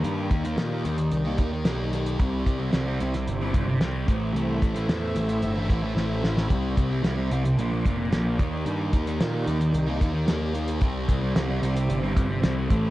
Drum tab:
HH |x-xxx-xxx-x-x-xx|x-x-x-xxx-x-x-x-|x-xxx-xxx-x-----|x-x-x-xxx-x-x-x-|
SD |----o-------o---|----o--o----o---|----o-------o-oo|----o-------o---|
BD |--o-------o-----|o-o-------o---o-|--o-------o-----|o-o-------o---o-|

HH |x-xxx-xxx-x-x-xx|x-x-x-xxx-x-x-x-|
SD |----o-------o---|----o-------o---|
BD |--o-------o-----|o-o-------o---o-|